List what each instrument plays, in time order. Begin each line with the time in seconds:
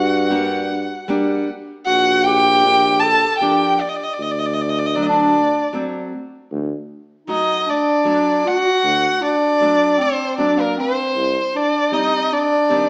Already playing: tuba G2, clarinet F#4, violin F#5
0.30 nylon-string guitar G3 A#3 D4
1.08 nylon-string guitar G3 A#3 D4
1.86 tuba A#1, clarinet F#4, violin F#5
2.23 clarinet G4, violin G5
2.63 nylon-string guitar F3 A#3 D4
3.00 clarinet A4, violin A5
3.38 nylon-string guitar F3 A#3, clarinet G4, violin G5
3.42 nylon-string guitar D4
3.80 violin D5
3.89 violin D#5
3.96 violin D5
4.03 violin D#5
4.13 violin D5
4.19 tuba D2, violin D#5
4.31 violin D5
4.39 violin D#5
4.46 violin D5
4.53 violin D#5
4.61 violin D5
4.69 violin D#5
4.78 violin D5
4.86 violin D#5
4.95 nylon-string guitar F#3 A3 D4, violin D5
5.02 violin D5 D#5
5.09 clarinet D4
5.73 nylon-string guitar F#3 A3 C4
6.51 tuba D2
7.27 nylon-string guitar F#3 A3 F#4, clarinet D#4, violin D#5
7.59 clarinet D#4
7.67 clarinet D4, violin D5
8.05 nylon-string guitar F#3 A3 D4
8.45 clarinet F#4, violin F#5
8.83 tuba D2
9.21 clarinet D4, violin D5
9.60 nylon-string guitar F#3 A3 D4
9.98 clarinet C4, violin C5
10.38 nylon-string guitar F#3 A3 D4, clarinet D4, violin D5
10.57 clarinet A#3, violin A#4
10.77 clarinet C4, violin C5
11.15 tuba C2
11.54 clarinet D4, violin D5
11.91 nylon-string guitar G3 C4 D#4, clarinet D#4, violin D#5
12.32 clarinet D4, violin D5
12.69 nylon-string guitar D#3 G3 C4